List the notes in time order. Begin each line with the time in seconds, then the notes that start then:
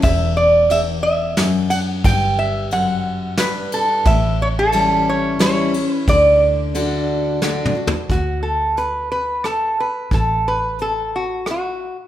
0.02 E1 E2 E5, kick, ride
0.37 D5
0.70 E2 E5, ride
1.03 E5
1.37 F#2, snare, ride
1.70 F#5, ride
2.04 G1 G2 G5, kick, ride
2.39 E5
2.71 F#2 F#5, ride
3.38 G2 B4, snare, ride
3.72 A4, ride
4.05 A1 A2 E5, kick, ride
4.42 C#5
4.59 A4
4.72 E3 G3 C#4 E4, ride
5.09 C#5
5.39 E3 G3 C#4 E4 C#5, snare, ride
5.74 C#4 E4, ride
5.94 B4
6.07 D2 D3 D5, kick, ride
6.75 D3 A3 D4 F#4, ride
7.42 D3 A3 D4 F#4, snare
7.65 mid tom
7.75 D4 F#4
7.87 floor tom
8.09 D2 F#4, kick, closed hi-hat
8.43 A4
8.77 B4, closed hi-hat
9.12 B4
9.44 A4, cross-stick, closed hi-hat
9.80 B4
10.11 A1 A4, kick, closed hi-hat
10.48 B4
10.79 A4, closed hi-hat
11.16 F#4
11.46 cross-stick, closed hi-hat
11.51 F#4